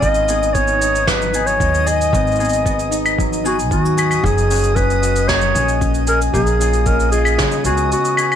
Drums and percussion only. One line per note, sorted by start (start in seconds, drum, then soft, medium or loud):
0.02 kick medium
0.02 cabasa medium
0.14 cabasa soft
0.28 cabasa medium
0.43 cabasa soft
0.55 kick loud
0.55 cabasa medium
0.67 cabasa soft
0.82 cabasa medium
0.95 cabasa medium
1.07 kick medium
1.07 snare medium
1.07 cabasa medium
1.22 cabasa soft
1.34 cabasa medium
1.47 cabasa soft
1.60 kick loud
1.60 cabasa medium
1.74 cabasa soft
1.87 cabasa medium
2.01 cabasa soft
2.13 kick medium
2.13 cabasa medium
2.27 cabasa soft
2.31 cabasa soft
2.35 cabasa soft
2.40 cabasa soft
2.44 cabasa soft
2.49 cabasa soft
2.53 cabasa soft
2.66 kick medium
2.66 cabasa medium
2.79 cabasa soft
2.92 cabasa medium
3.06 cabasa soft
3.06 claves medium
3.19 kick medium
3.19 cabasa medium
3.33 cabasa soft
3.46 cabasa medium
3.59 cabasa soft
3.71 kick medium
3.71 cabasa medium
3.85 cabasa soft
3.98 cabasa medium
3.98 claves medium
4.11 cabasa medium
4.11 claves soft
4.24 kick medium
4.24 cabasa medium
4.38 cabasa soft
4.51 cabasa medium
4.54 cabasa medium
4.56 cabasa soft
4.58 cabasa soft
4.61 cabasa soft
4.64 cabasa soft
4.76 kick medium
4.76 cabasa soft
4.90 cabasa soft
5.03 cabasa medium
5.16 cabasa soft
5.29 kick medium
5.29 snare medium
5.29 cabasa soft
5.41 cabasa soft
5.56 cabasa medium
5.68 cabasa soft
5.81 kick medium
5.81 cabasa soft
5.94 cabasa soft
6.07 cabasa medium
6.21 cabasa soft
6.34 kick medium
6.34 cabasa medium
6.47 cabasa soft
6.61 cabasa medium
6.73 cabasa soft
6.86 kick medium
6.86 cabasa medium
7.00 cabasa soft
7.12 cabasa medium
7.25 cabasa soft
7.25 claves medium
7.38 kick medium
7.38 snare medium
7.38 cabasa medium
7.51 cabasa soft
7.65 cabasa medium
7.77 cabasa soft
7.92 cabasa medium
8.05 cabasa soft
8.17 cabasa medium
8.17 claves medium
8.32 cabasa soft
8.32 claves medium